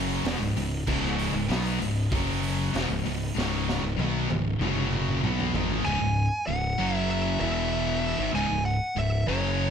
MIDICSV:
0, 0, Header, 1, 5, 480
1, 0, Start_track
1, 0, Key_signature, 4, "minor"
1, 0, Tempo, 623053
1, 669, Time_signature, 4, 2, 24, 8
1, 4510, Key_signature, 4, "minor"
1, 7474, End_track
2, 0, Start_track
2, 0, Title_t, "Lead electric guitar"
2, 0, Program_c, 0, 29
2, 4506, Note_on_c, 0, 80, 121
2, 4980, Note_off_c, 0, 80, 0
2, 4983, Note_on_c, 0, 78, 108
2, 5368, Note_off_c, 0, 78, 0
2, 5368, Note_on_c, 0, 76, 108
2, 5469, Note_off_c, 0, 76, 0
2, 5469, Note_on_c, 0, 76, 101
2, 5693, Note_off_c, 0, 76, 0
2, 5704, Note_on_c, 0, 76, 98
2, 6396, Note_off_c, 0, 76, 0
2, 6434, Note_on_c, 0, 80, 124
2, 6662, Note_off_c, 0, 80, 0
2, 6665, Note_on_c, 0, 78, 86
2, 6914, Note_off_c, 0, 78, 0
2, 6921, Note_on_c, 0, 76, 107
2, 7148, Note_off_c, 0, 76, 0
2, 7151, Note_on_c, 0, 73, 89
2, 7474, Note_off_c, 0, 73, 0
2, 7474, End_track
3, 0, Start_track
3, 0, Title_t, "Distorted electric guitar"
3, 0, Program_c, 1, 30
3, 0, Note_on_c, 1, 42, 115
3, 0, Note_on_c, 1, 49, 99
3, 0, Note_on_c, 1, 54, 118
3, 181, Note_off_c, 1, 42, 0
3, 183, Note_off_c, 1, 49, 0
3, 184, Note_off_c, 1, 54, 0
3, 186, Note_on_c, 1, 40, 95
3, 190, Note_on_c, 1, 47, 123
3, 301, Note_off_c, 1, 40, 0
3, 302, Note_off_c, 1, 47, 0
3, 311, Note_on_c, 1, 37, 68
3, 314, Note_on_c, 1, 44, 75
3, 424, Note_off_c, 1, 37, 0
3, 430, Note_off_c, 1, 44, 0
3, 433, Note_on_c, 1, 37, 66
3, 439, Note_on_c, 1, 44, 80
3, 623, Note_off_c, 1, 37, 0
3, 626, Note_off_c, 1, 44, 0
3, 675, Note_on_c, 1, 37, 89
3, 677, Note_on_c, 1, 44, 86
3, 679, Note_on_c, 1, 49, 104
3, 1025, Note_off_c, 1, 37, 0
3, 1026, Note_off_c, 1, 44, 0
3, 1027, Note_off_c, 1, 49, 0
3, 1035, Note_on_c, 1, 37, 74
3, 1038, Note_on_c, 1, 44, 69
3, 1141, Note_off_c, 1, 37, 0
3, 1144, Note_on_c, 1, 47, 98
3, 1146, Note_off_c, 1, 44, 0
3, 1149, Note_on_c, 1, 54, 105
3, 1152, Note_on_c, 1, 59, 99
3, 1379, Note_off_c, 1, 47, 0
3, 1382, Note_off_c, 1, 54, 0
3, 1383, Note_off_c, 1, 59, 0
3, 1385, Note_on_c, 1, 37, 67
3, 1389, Note_on_c, 1, 44, 65
3, 1579, Note_off_c, 1, 37, 0
3, 1581, Note_off_c, 1, 44, 0
3, 1626, Note_on_c, 1, 42, 101
3, 1631, Note_on_c, 1, 49, 95
3, 1631, Note_on_c, 1, 54, 108
3, 2100, Note_off_c, 1, 42, 0
3, 2100, Note_off_c, 1, 49, 0
3, 2103, Note_off_c, 1, 54, 0
3, 2103, Note_on_c, 1, 40, 93
3, 2104, Note_on_c, 1, 47, 115
3, 2214, Note_off_c, 1, 40, 0
3, 2218, Note_off_c, 1, 47, 0
3, 2218, Note_on_c, 1, 37, 67
3, 2221, Note_on_c, 1, 44, 72
3, 2330, Note_off_c, 1, 37, 0
3, 2333, Note_off_c, 1, 44, 0
3, 2339, Note_on_c, 1, 37, 74
3, 2342, Note_on_c, 1, 44, 71
3, 2536, Note_off_c, 1, 37, 0
3, 2538, Note_off_c, 1, 44, 0
3, 2575, Note_on_c, 1, 37, 98
3, 2579, Note_on_c, 1, 44, 103
3, 2585, Note_on_c, 1, 49, 86
3, 2929, Note_off_c, 1, 37, 0
3, 2935, Note_off_c, 1, 44, 0
3, 2939, Note_on_c, 1, 37, 69
3, 2940, Note_off_c, 1, 49, 0
3, 2944, Note_on_c, 1, 44, 77
3, 3051, Note_off_c, 1, 37, 0
3, 3054, Note_on_c, 1, 47, 93
3, 3055, Note_off_c, 1, 44, 0
3, 3058, Note_on_c, 1, 54, 95
3, 3062, Note_on_c, 1, 59, 94
3, 3295, Note_off_c, 1, 47, 0
3, 3297, Note_off_c, 1, 54, 0
3, 3298, Note_on_c, 1, 37, 65
3, 3299, Note_off_c, 1, 59, 0
3, 3301, Note_on_c, 1, 44, 71
3, 3496, Note_off_c, 1, 37, 0
3, 3497, Note_off_c, 1, 44, 0
3, 3537, Note_on_c, 1, 42, 96
3, 3542, Note_on_c, 1, 49, 110
3, 3544, Note_on_c, 1, 54, 107
3, 4016, Note_off_c, 1, 42, 0
3, 4018, Note_off_c, 1, 54, 0
3, 4019, Note_off_c, 1, 49, 0
3, 4023, Note_on_c, 1, 47, 108
3, 4027, Note_on_c, 1, 54, 108
3, 4029, Note_on_c, 1, 59, 104
3, 4259, Note_off_c, 1, 47, 0
3, 4261, Note_off_c, 1, 54, 0
3, 4262, Note_off_c, 1, 59, 0
3, 4265, Note_on_c, 1, 44, 103
3, 4270, Note_on_c, 1, 51, 88
3, 4272, Note_on_c, 1, 56, 111
3, 4501, Note_off_c, 1, 44, 0
3, 4503, Note_off_c, 1, 51, 0
3, 4504, Note_off_c, 1, 56, 0
3, 4505, Note_on_c, 1, 37, 87
3, 4509, Note_on_c, 1, 44, 102
3, 4618, Note_off_c, 1, 37, 0
3, 4619, Note_off_c, 1, 44, 0
3, 4627, Note_on_c, 1, 37, 68
3, 4629, Note_on_c, 1, 44, 73
3, 4821, Note_off_c, 1, 37, 0
3, 4821, Note_off_c, 1, 44, 0
3, 4987, Note_on_c, 1, 37, 68
3, 4990, Note_on_c, 1, 44, 64
3, 5181, Note_off_c, 1, 37, 0
3, 5182, Note_off_c, 1, 44, 0
3, 5220, Note_on_c, 1, 42, 94
3, 5225, Note_on_c, 1, 49, 99
3, 5227, Note_on_c, 1, 54, 98
3, 5698, Note_off_c, 1, 42, 0
3, 5700, Note_off_c, 1, 49, 0
3, 5701, Note_off_c, 1, 54, 0
3, 5701, Note_on_c, 1, 40, 74
3, 5707, Note_on_c, 1, 47, 82
3, 5709, Note_on_c, 1, 52, 84
3, 6298, Note_off_c, 1, 40, 0
3, 6301, Note_off_c, 1, 47, 0
3, 6302, Note_off_c, 1, 52, 0
3, 6304, Note_on_c, 1, 44, 98
3, 6305, Note_on_c, 1, 51, 107
3, 6412, Note_off_c, 1, 44, 0
3, 6417, Note_on_c, 1, 37, 97
3, 6418, Note_off_c, 1, 51, 0
3, 6421, Note_on_c, 1, 44, 117
3, 6530, Note_off_c, 1, 37, 0
3, 6530, Note_off_c, 1, 44, 0
3, 6539, Note_on_c, 1, 37, 73
3, 6539, Note_on_c, 1, 44, 75
3, 6736, Note_off_c, 1, 37, 0
3, 6736, Note_off_c, 1, 44, 0
3, 6899, Note_on_c, 1, 37, 62
3, 6901, Note_on_c, 1, 44, 71
3, 7096, Note_off_c, 1, 37, 0
3, 7097, Note_off_c, 1, 44, 0
3, 7141, Note_on_c, 1, 42, 94
3, 7144, Note_on_c, 1, 49, 96
3, 7147, Note_on_c, 1, 54, 96
3, 7474, Note_off_c, 1, 42, 0
3, 7474, Note_off_c, 1, 49, 0
3, 7474, Note_off_c, 1, 54, 0
3, 7474, End_track
4, 0, Start_track
4, 0, Title_t, "Fingered electric bass"
4, 0, Program_c, 2, 33
4, 0, Note_on_c, 2, 30, 94
4, 160, Note_off_c, 2, 30, 0
4, 186, Note_on_c, 2, 28, 89
4, 299, Note_off_c, 2, 28, 0
4, 306, Note_on_c, 2, 25, 77
4, 419, Note_off_c, 2, 25, 0
4, 428, Note_on_c, 2, 25, 79
4, 652, Note_off_c, 2, 25, 0
4, 672, Note_on_c, 2, 25, 101
4, 1006, Note_off_c, 2, 25, 0
4, 1022, Note_on_c, 2, 25, 93
4, 1137, Note_off_c, 2, 25, 0
4, 1144, Note_on_c, 2, 35, 101
4, 1370, Note_off_c, 2, 35, 0
4, 1386, Note_on_c, 2, 25, 81
4, 1611, Note_off_c, 2, 25, 0
4, 1633, Note_on_c, 2, 30, 96
4, 2080, Note_off_c, 2, 30, 0
4, 2109, Note_on_c, 2, 28, 91
4, 2221, Note_off_c, 2, 28, 0
4, 2231, Note_on_c, 2, 25, 92
4, 2342, Note_off_c, 2, 25, 0
4, 2351, Note_on_c, 2, 25, 85
4, 2574, Note_off_c, 2, 25, 0
4, 2586, Note_on_c, 2, 25, 85
4, 2923, Note_off_c, 2, 25, 0
4, 2947, Note_on_c, 2, 25, 79
4, 3060, Note_off_c, 2, 25, 0
4, 3065, Note_on_c, 2, 35, 100
4, 3290, Note_off_c, 2, 35, 0
4, 3306, Note_on_c, 2, 25, 70
4, 3531, Note_off_c, 2, 25, 0
4, 3545, Note_on_c, 2, 30, 95
4, 3997, Note_off_c, 2, 30, 0
4, 4030, Note_on_c, 2, 35, 95
4, 4253, Note_off_c, 2, 35, 0
4, 4268, Note_on_c, 2, 32, 105
4, 4492, Note_off_c, 2, 32, 0
4, 4510, Note_on_c, 2, 25, 98
4, 4622, Note_off_c, 2, 25, 0
4, 4634, Note_on_c, 2, 25, 77
4, 4855, Note_off_c, 2, 25, 0
4, 4993, Note_on_c, 2, 25, 101
4, 5215, Note_off_c, 2, 25, 0
4, 5232, Note_on_c, 2, 30, 89
4, 5680, Note_off_c, 2, 30, 0
4, 5705, Note_on_c, 2, 28, 101
4, 6276, Note_off_c, 2, 28, 0
4, 6305, Note_on_c, 2, 32, 104
4, 6416, Note_off_c, 2, 32, 0
4, 6420, Note_on_c, 2, 25, 92
4, 6536, Note_off_c, 2, 25, 0
4, 6550, Note_on_c, 2, 25, 75
4, 6773, Note_off_c, 2, 25, 0
4, 6904, Note_on_c, 2, 25, 100
4, 7129, Note_off_c, 2, 25, 0
4, 7147, Note_on_c, 2, 30, 107
4, 7474, Note_off_c, 2, 30, 0
4, 7474, End_track
5, 0, Start_track
5, 0, Title_t, "Drums"
5, 192, Note_on_c, 9, 46, 79
5, 204, Note_on_c, 9, 38, 113
5, 269, Note_off_c, 9, 46, 0
5, 281, Note_off_c, 9, 38, 0
5, 436, Note_on_c, 9, 46, 70
5, 513, Note_off_c, 9, 46, 0
5, 673, Note_on_c, 9, 36, 96
5, 674, Note_on_c, 9, 49, 104
5, 750, Note_off_c, 9, 36, 0
5, 752, Note_off_c, 9, 49, 0
5, 812, Note_on_c, 9, 38, 34
5, 889, Note_off_c, 9, 38, 0
5, 915, Note_on_c, 9, 46, 60
5, 992, Note_off_c, 9, 46, 0
5, 1156, Note_on_c, 9, 46, 79
5, 1168, Note_on_c, 9, 38, 100
5, 1233, Note_off_c, 9, 46, 0
5, 1245, Note_off_c, 9, 38, 0
5, 1399, Note_on_c, 9, 46, 57
5, 1476, Note_off_c, 9, 46, 0
5, 1632, Note_on_c, 9, 36, 112
5, 1634, Note_on_c, 9, 46, 78
5, 1709, Note_off_c, 9, 36, 0
5, 1711, Note_off_c, 9, 46, 0
5, 1873, Note_on_c, 9, 46, 63
5, 1950, Note_off_c, 9, 46, 0
5, 2115, Note_on_c, 9, 46, 81
5, 2127, Note_on_c, 9, 38, 112
5, 2192, Note_off_c, 9, 46, 0
5, 2204, Note_off_c, 9, 38, 0
5, 2352, Note_on_c, 9, 46, 71
5, 2430, Note_off_c, 9, 46, 0
5, 2607, Note_on_c, 9, 38, 72
5, 2684, Note_off_c, 9, 38, 0
5, 2844, Note_on_c, 9, 38, 77
5, 2921, Note_off_c, 9, 38, 0
5, 3075, Note_on_c, 9, 48, 76
5, 3152, Note_off_c, 9, 48, 0
5, 3314, Note_on_c, 9, 48, 96
5, 3391, Note_off_c, 9, 48, 0
5, 3552, Note_on_c, 9, 47, 90
5, 3629, Note_off_c, 9, 47, 0
5, 3671, Note_on_c, 9, 47, 83
5, 3748, Note_off_c, 9, 47, 0
5, 3795, Note_on_c, 9, 45, 100
5, 3872, Note_off_c, 9, 45, 0
5, 3918, Note_on_c, 9, 45, 80
5, 3995, Note_off_c, 9, 45, 0
5, 4035, Note_on_c, 9, 45, 91
5, 4112, Note_off_c, 9, 45, 0
5, 4160, Note_on_c, 9, 43, 104
5, 4237, Note_off_c, 9, 43, 0
5, 4278, Note_on_c, 9, 43, 113
5, 4355, Note_off_c, 9, 43, 0
5, 4396, Note_on_c, 9, 43, 89
5, 4473, Note_off_c, 9, 43, 0
5, 7474, End_track
0, 0, End_of_file